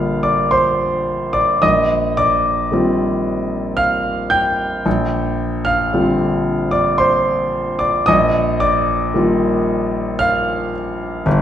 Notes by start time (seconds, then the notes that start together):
Already playing: A#1 D3 G3 A#3 F4 F5 F6
0.23 D5 D6
0.51 C5 C6
1.33 D5 D6
1.62 A#1 D#5 D#6
2.17 D5 D6
2.72 D#3 G3 C4 F4
3.77 F5 F6
4.30 G5 G6
4.86 A#1
5.65 F5 F6
5.93 D3 G3 C4 F4
6.71 D5 D6
6.98 C5 C6
7.79 D5 D6
8.06 A#1 D#5 D#6
8.60 D5 D6
9.14 D#3 G3 A#3 F4
10.19 F5 F6
11.26 G1